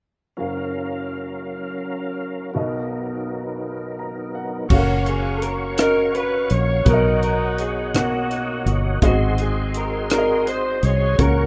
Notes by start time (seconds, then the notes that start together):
0.37 F#1 F#2 F#3 C#4 F#4 A#4 F5
2.53 B1 B2 B3 D#4 F#4 A#4 D#5
3.99 A#5
4.35 F#5
4.69 F#1 C#4 F#4 A4 C#5 F5 C#6, kick, crash
4.73 A#3 C#4 F#4
4.78 A#4
5.06 G#4, closed hi-hat
5.36 A4
5.42 A#4, closed hi-hat
5.77 C#4 F#4 A#4 D#5 A#5, cross-stick, closed hi-hat
6.15 B4, closed hi-hat
6.50 A#1 C#5, closed hi-hat
6.54 C#5
6.85 B1 B2 B3 F#4 A#4 C#5 D#5 F#5, kick, closed hi-hat
6.89 D#4 F#4 A#4
6.93 D#5
7.23 A#4, closed hi-hat
7.58 G#4, closed hi-hat
7.94 B2 A#3 D#4 F#4 A#4 F#5, cross-stick, closed hi-hat
8.31 closed hi-hat
8.66 G1, closed hi-hat
9.02 G#1 G#2 B3 C4 D#4 F#4 G#4 D#5 C6, kick, closed hi-hat
9.08 C4
9.38 G#4, closed hi-hat
9.74 A#4, closed hi-hat
10.10 C4 F#4 G#4 A#4 D5, cross-stick, closed hi-hat
10.18 D#5
10.47 C5, closed hi-hat
10.83 C2 C#5, closed hi-hat
11.18 C#2 C#3 A#3 C#4 F#4 A#4 C#5 C#6, kick, closed hi-hat